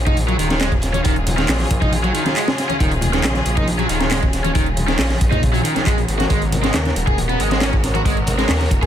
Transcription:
Already playing: detuned saw bass A#1, string section C#3 F#3 F4 G#4
0.07 overdriven electric guitar D#4, kick, closed hi-hat, low conga
0.17 closed hi-hat, high conga
0.28 overdriven electric guitar F#3, closed hi-hat
0.39 detuned saw bass D#1, overdriven electric guitar D#3, closed hi-hat
0.50 overdriven electric guitar D#3, snare, closed hi-hat, high conga
0.61 overdriven electric guitar G#3, snare, clap, closed hi-hat
0.72 kick, closed hi-hat
0.82 snare, closed hi-hat
0.94 overdriven electric guitar C#4, closed hi-hat, muted conga, high conga
1.04 detuned saw bass D#1, overdriven electric guitar D#3, kick, closed hi-hat
1.16 closed hi-hat
1.27 closed hi-hat, muted conga, high conga, low conga
1.38 overdriven electric guitar D#3, snare, closed hi-hat
1.48 detuned saw bass A#1, snare, clap, closed hi-hat, open hi-hat
1.59 snare, closed hi-hat, high conga
1.71 detuned saw bass A#1, kick, closed hi-hat
1.82 overdriven electric guitar D#4, kick, closed hi-hat, low conga
1.92 closed hi-hat, high conga
2.04 overdriven electric guitar F#3, closed hi-hat
2.14 overdriven electric guitar D#3, closed hi-hat, muted conga
2.25 overdriven electric guitar D#3, snare, closed hi-hat, high conga
2.36 overdriven electric guitar G#3, clap, closed hi-hat
2.48 snare, closed hi-hat
2.58 snare, closed hi-hat
2.69 overdriven electric guitar C#4, closed hi-hat, high conga
2.80 detuned saw bass D#1, overdriven electric guitar D#3, kick, closed hi-hat
2.91 closed hi-hat
3.01 closed hi-hat, muted conga, high conga, low conga
3.13 overdriven electric guitar D#3, snare, closed hi-hat
3.24 detuned saw bass A#1, snare, clap, closed hi-hat
3.35 snare, closed hi-hat, high conga
3.46 detuned saw bass A#1, closed hi-hat, muted conga
3.57 overdriven electric guitar D#4, kick, closed hi-hat, low conga
3.68 closed hi-hat, high conga
3.79 overdriven electric guitar F#3, closed hi-hat
3.89 detuned saw bass D#1, overdriven electric guitar D#3, closed hi-hat
4.00 overdriven electric guitar D#3, snare, closed hi-hat, high conga
4.11 overdriven electric guitar G#3, snare, clap, closed hi-hat
4.23 kick, closed hi-hat
4.33 snare, closed hi-hat
4.44 overdriven electric guitar C#4, closed hi-hat, muted conga, high conga
4.55 detuned saw bass D#1, overdriven electric guitar D#3, kick, closed hi-hat
4.66 closed hi-hat
4.77 closed hi-hat, muted conga, high conga, low conga
4.88 overdriven electric guitar D#3, snare, closed hi-hat
4.99 detuned saw bass A#1, snare, clap, closed hi-hat, open hi-hat
5.10 snare, closed hi-hat, high conga
5.21 detuned saw bass A#1, kick, closed hi-hat
5.31 overdriven electric guitar D#4, kick, closed hi-hat, low conga
5.43 kick, closed hi-hat, high conga
5.54 overdriven electric guitar F#3, closed hi-hat
5.64 overdriven electric guitar D#3, closed hi-hat, muted conga
5.75 detuned saw bass A#1, overdriven electric guitar D#3, snare, closed hi-hat, high conga
5.86 detuned saw bass A#1, overdriven electric guitar G#3, kick, clap, closed hi-hat
5.98 closed hi-hat
6.08 detuned saw bass G#1, string section B3 F#4 A#4, closed hi-hat
6.19 overdriven electric guitar F#4, snare, closed hi-hat, high conga
6.30 detuned saw bass G#1, overdriven electric guitar G#3, kick, closed hi-hat
6.42 closed hi-hat
6.52 closed hi-hat, muted conga, high conga, low conga
6.63 overdriven electric guitar G#3, snare, closed hi-hat
6.74 detuned saw bass D#2, snare, clap, closed hi-hat
6.85 snare, closed hi-hat, high conga
6.96 detuned saw bass D#1, closed hi-hat, muted conga
7.07 overdriven electric guitar G#4, kick, closed hi-hat, low conga
7.18 closed hi-hat, high conga
7.29 overdriven electric guitar B3, closed hi-hat
7.40 detuned saw bass G#1, overdriven electric guitar G#3, closed hi-hat
7.51 overdriven electric guitar G#3, snare, closed hi-hat, high conga
7.61 overdriven electric guitar C#4, snare, clap, closed hi-hat
7.73 kick, closed hi-hat
7.84 snare, closed hi-hat
7.95 overdriven electric guitar F#4, closed hi-hat, muted conga, high conga
8.05 detuned saw bass G#1, overdriven electric guitar G#3, kick, closed hi-hat
8.17 closed hi-hat
8.27 closed hi-hat, muted conga, high conga, low conga
8.38 overdriven electric guitar G#3, snare, closed hi-hat
8.48 detuned saw bass D#2, snare, clap, closed hi-hat, open hi-hat
8.61 snare, closed hi-hat, high conga
8.71 detuned saw bass D#1, kick, closed hi-hat, muted conga
8.83 overdriven electric guitar G#4, kick, closed hi-hat, low conga

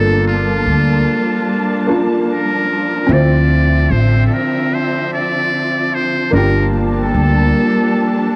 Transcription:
Already playing: upright bass G1, string section F3 G3 A#3 D4 A5, felt piano A#3 D4 F4 A4, muted trumpet A4
0.27 muted trumpet F4
0.66 upright bass D2
1.87 felt piano A#3 D4 F4 A#4
2.30 muted trumpet A#4
3.07 upright bass D2, string section D3 C4 E5, felt piano C4 E4
3.11 felt piano F4 C5, muted trumpet D5
3.90 upright bass A1, muted trumpet C5
4.26 muted trumpet A4
4.33 muted trumpet A#4
4.74 muted trumpet C5
5.14 muted trumpet D5
5.94 muted trumpet C5
6.31 upright bass G1, string section G3 A#3 D4 A5, felt piano A#3 D4, muted trumpet A#4
6.35 felt piano F4 G4
7.02 muted trumpet A4
7.14 upright bass D2

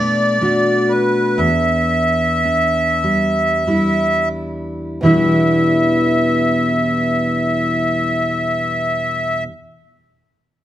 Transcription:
Already playing: steel-string acoustic guitar B2 A3 D4, accordion D5
0.41 steel-string acoustic guitar A3 D4 F#4
0.89 accordion B4
1.38 steel-string acoustic guitar E2, accordion E5
2.45 steel-string acoustic guitar D4
3.04 steel-string acoustic guitar G3
3.67 steel-string acoustic guitar G3 D4 E4
5.01 steel-string acoustic guitar E2 B2 E3 G3, accordion E5
5.06 steel-string acoustic guitar D4 E4

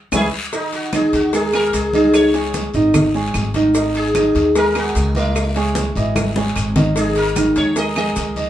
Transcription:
0.12 upright bass C#2, steel-string acoustic guitar E3 G#3 C#4, sitar D#4 E4 G#4, grand piano E4 G#4 C#5, low bongo, high conga, long guiro, claves, maracas
0.53 grand piano D#3 D#4 D#5, sitar D#4, cowbell, high conga, long guiro, maracas
0.73 sitar F#4, cowbell, high conga, maracas
0.93 grand piano D#3 D#4 D#5, sitar G#4, cowbell, high conga, short guiro, claves, maracas
1.13 upright bass D#2, sitar F#4, cowbell, short guiro, maracas
1.33 grand piano G#3 G#4 A#4, sitar G#4, cowbell, high conga, long guiro, maracas
1.53 grand piano G#3 G#4 A#4, sitar A#4, cowbell, high conga, claves, maracas
1.73 upright bass C#2, sitar G#4, cowbell, high conga, short guiro, maracas
1.93 grand piano D#3 D#4 D#5, sitar G#4, high conga, short guiro, maracas
2.14 sitar C#5, cowbell, high conga, long guiro, claves, maracas
2.34 grand piano G#3 G#4 C#5, cowbell, high conga, maracas
2.54 cowbell, high conga, short guiro, maracas
2.74 upright bass G#1, grand piano D#3 D#4 D#5, high conga, short guiro, maracas
2.94 cowbell, high conga, low conga, long guiro, claves, maracas
3.15 grand piano G#3 G#4 C#5, high conga, maracas
3.34 upright bass G#1, cowbell, high conga, short guiro, claves, maracas
3.54 grand piano D#3 D#4 D#5, cowbell, high conga, short guiro, maracas
3.74 grand piano D#3 D#4 D#5, cowbell, long guiro, maracas
3.95 sitar G#4, cowbell, high conga, maracas
4.15 grand piano D#3 D#4 D#5, cowbell, high conga, short guiro, claves, maracas
4.35 upright bass D#2, cowbell, high conga, short guiro, maracas
4.55 grand piano G#3 G#4 A#4, sitar A#4, cowbell, high conga, long guiro, maracas
4.75 grand piano G#3 G#4 A#4, sitar F#4, cowbell, high conga, claves, maracas
4.95 upright bass C#2, cowbell, high conga, short guiro, maracas
5.15 grand piano A#3 D#5, sitar E4, high conga, short guiro, maracas
5.35 cowbell, high conga, long guiro, claves, maracas
5.56 grand piano G#3 G#4 C#5, cowbell, high conga, maracas
5.75 cowbell, high conga, short guiro, maracas
5.96 upright bass G#1, grand piano E3 E4 D#5, high conga, short guiro, maracas
6.16 cowbell, high conga, long guiro, claves, maracas
6.36 grand piano G#3 G#4 C#5, high bongo, high conga, maracas
6.56 upright bass G#1, cowbell, short guiro, claves, maracas
6.76 grand piano D#3 D#4 D#5, cowbell, low bongo, low conga, short guiro, maracas
6.96 steel-string acoustic guitar D#3 G#3 D#4 G#4, grand piano D#3 D#4 D#5, sitar G#4, cowbell, long guiro, maracas
7.16 sitar A#4, cowbell, high conga, maracas
7.36 grand piano D#3 D#4 D#5, cowbell, high conga, short guiro, claves, maracas
7.56 upright bass D#2, steel-string acoustic guitar G#3 D#4 G#4, sitar C#5, cowbell, short guiro, maracas
7.76 grand piano G#3 G#4 A#4, sitar D#5, muted steel-string acoustic guitar stroke, cowbell, high conga, long guiro, maracas
7.96 grand piano G#3 G#4 A#4, steel-string acoustic guitar G#3 D#4 G#4, sitar D#5, cowbell, high conga, claves, maracas
8.16 upright bass C#2, steel-string acoustic guitar D#3 G#3 D#4 G#4, cowbell, high conga, short guiro, maracas
8.36 grand piano D#5, high conga, short guiro, maracas

